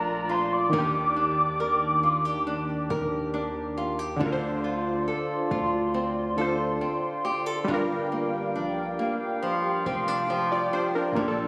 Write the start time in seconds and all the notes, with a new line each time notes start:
Already playing: A#1 A#2 A3 A#3 D4 F4 D5 A#5
0.29 F4 C6
0.53 D6
0.69 D#3 A#3
0.73 D#2 D4 G4 A#4
0.78 G4
1.16 D4
1.60 A#4
2.03 F4
2.25 G4
2.47 D4
2.90 D#2 A#4
3.34 D4
3.77 F4
3.99 G4
4.16 D3 D4
4.20 D2 D3 F4 D5 C6
4.26 A#4
4.32 C5
4.64 F4
5.08 A4
5.51 D2 F4
5.94 C4
6.36 D3 D4 F4 A4
6.41 C5
6.81 C4
7.25 G4
7.46 A4
7.64 G2 G3 D4
7.68 G1 F4 G4 F5 G5
7.74 A#4
8.12 A#3
8.55 A#1 D4
8.99 A#3
9.43 F3
9.86 F1 C4
10.08 D4
10.30 F3
10.52 F4 D5
10.73 D4 C5
10.95 D4 A#4
11.12 A#2 A#3
11.16 A#1 A#2 D4 A4 D5
11.21 G4
11.28 A4